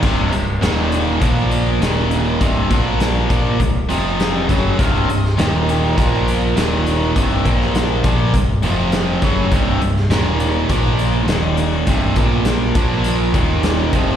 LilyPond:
<<
  \new Staff \with { instrumentName = "Lead electric guitar" } { \time 4/4 \key c \minor \tempo 4 = 102 r1 | r1 | f''8 ees''16 c''16 g'16 bes'16 g'8 bes'8 r4. | r1 |
r1 | r1 | }
  \new Staff \with { instrumentName = "Overdriven electric guitar" } { \clef bass \time 4/4 \key c \minor <c, g, c>8 <c, g,>8 <ees, bes, ees>4 <bes, f bes>4 <ees, bes, ees>4 | <c, g, c>8 <bes, f bes>4 <bes, f bes>8 <c, g,>8 <f, c f>4 <fis, des fis>8 | <c, g, c>8 <c, g,>8 <ees, bes, ees>4 <bes, f bes>4 <ees, bes, ees>4 | <c, g, c>8 <bes, f bes>4 <bes, f bes>8 <c, g,>8 <f, c f>4 <fis, des fis>8 |
<c, g, c>8 <c, g,>8 <ees, bes, ees>4 <bes, f bes>4 <ees, bes, ees>4 | <c, g, c>8 <bes, f bes>4 <bes, f bes>4 <ees, bes, ees>4 <f, c f>8 | }
  \new Staff \with { instrumentName = "Overdriven electric guitar" } { \clef bass \time 4/4 \key c \minor <c, g, c>8 <c, g,>8 <ees, bes, ees>4 <bes, f bes>4 <ees, bes, ees>4 | <c, g, c>8 <bes, f bes>4 <bes, f bes>8 <c, g,>8 <f, c f>4 <fis, des fis>8 | <c, g, c>8 <c, g,>8 <ees, bes, ees>4 <bes, f bes>4 <ees, bes, ees>4 | <c, g, c>8 <bes, f bes>4 <bes, f bes>8 <c, g,>8 <f, c f>4 <fis, des fis>8 |
<c, g, c>8 <c, g,>8 <ees, bes, ees>4 <bes, f bes>4 <ees, bes, ees>4 | <c, g, c>8 <bes, f bes>4 <bes, f bes>4 <ees, bes, ees>4 <f, c f>8 | }
  \new Staff \with { instrumentName = "Picked electric bass" } { \clef bass \time 4/4 \key c \minor c,,8 c,,8 ees,,4 bes,,4 ees,,4 | c,,8 bes,,4 bes,,8 c,,8 f,,4 fis,,8 | c,,8 c,,8 ees,,4 bes,,4 ees,,4 | c,,8 bes,,4 bes,,8 c,,8 f,,4 fis,,8 |
c,,8 c,,8 ees,,4 bes,,4 ees,,4 | c,,8 bes,,4 bes,,4 ees,,4 f,,8 | }
  \new DrumStaff \with { instrumentName = "Drums" } \drummode { \time 4/4 <cymc bd>8 hh8 <hh sn>8 hh8 <hh bd>8 hh8 <hh sn>8 hh8 | <hh bd>8 <hh bd>8 <hh sn>8 <hh bd>8 <hh bd>8 hh8 <hh sn>8 <hh bd>8 | <hh bd>8 hh16 sn16 <hh sn>8 hh8 <hh bd>8 hh8 <hh sn>8 hh8 | <hh bd>8 <hh bd>16 sn16 <hh sn>8 <hh bd>8 <hh bd>8 hh8 <hh sn>8 <hh bd>8 |
<hh bd>8 hh16 sn16 <hh sn>8 hh8 <hh bd>8 hh8 <hh sn>8 hh8 | <hh bd>8 <hh bd>8 <hh sn>8 <hh bd>8 hh8 <hh bd>8 <hh sn>8 <hh bd>8 | }
>>